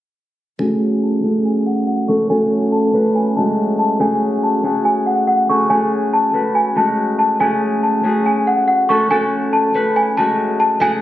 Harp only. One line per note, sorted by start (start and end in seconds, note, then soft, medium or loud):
0.59 1.22 A3 medium
0.59 1.23 C#4 medium
0.59 1.23 F#4 medium
0.59 1.24 G#4 loud
1.23 2.08 A3 medium
1.23 2.08 C#4 medium
1.23 2.09 F#4 medium
1.23 2.14 G#4 medium
2.08 2.25 A3 medium
2.08 2.25 C#4 medium
2.08 2.25 F#4 medium
2.08 2.26 A4 medium
2.29 2.93 A3 loud
2.29 2.93 C#4 medium
2.29 2.94 F#4 medium
2.29 3.44 A4 loud
2.93 3.26 A3 medium
2.93 3.27 C#4 medium
2.93 3.27 F#4 medium
2.93 3.27 B4 medium
3.36 4.05 G#3 medium
3.36 3.99 A3 medium
3.36 3.99 C#4 medium
3.36 4.00 F#4 medium
3.99 4.63 A3 loud
3.99 4.63 C#4 medium
3.99 4.64 F#4 medium
3.99 4.64 G#4 loud
4.63 5.49 A3 medium
4.63 5.49 C#4 medium
4.63 5.50 F#4 medium
4.63 5.50 G#4 medium
5.49 5.66 A3 medium
5.49 5.66 C#4 medium
5.49 5.66 F#4 medium
5.49 5.66 G#4 medium
5.69 6.33 A3 medium
5.69 6.33 C#4 medium
5.69 6.34 F#4 medium
5.69 6.39 G#4 loud
6.33 6.67 A3 medium
6.33 6.67 C#4 medium
6.33 6.67 F#4 medium
6.33 6.67 B4 medium
6.75 7.46 G#3 medium
6.75 7.39 A3 medium
6.75 7.40 C#4 medium
6.75 7.40 F#4 medium
7.40 8.03 A3 medium
7.40 8.03 C#4 medium
7.40 8.04 F#4 medium
7.40 8.04 G#4 loud
8.03 8.89 A3 medium
8.03 8.89 C#4 medium
8.03 8.90 F#4 medium
8.03 8.95 G#4 medium
8.89 9.06 A3 medium
8.89 9.06 C#4 medium
8.89 9.06 F#4 medium
8.89 9.06 A4 medium
9.10 9.74 A3 loud
9.10 9.74 C#4 medium
9.10 9.75 F#4 medium
9.10 10.24 A4 loud
9.74 10.07 A3 medium
9.74 10.07 C#4 medium
9.74 10.08 F#4 medium
9.74 10.08 B4 medium
10.17 10.86 G#3 medium
10.17 10.80 A3 medium
10.17 10.80 C#4 medium
10.17 10.81 F#4 medium
10.80 11.02 A3 medium
10.80 11.02 C#4 medium
10.80 11.02 F#4 medium
10.80 11.02 G#4 loud